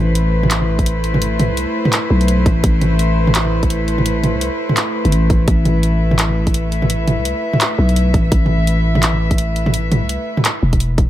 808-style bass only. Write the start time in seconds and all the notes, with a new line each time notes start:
Already playing: A1
1.50 C2
2.10 B1
2.46 A1
2.64 A1
4.34 C2
5.05 G1
5.12 A1
5.48 A1
7.18 C2
7.78 B1
8.14 A1
8.32 A1
10.02 C2
10.63 E1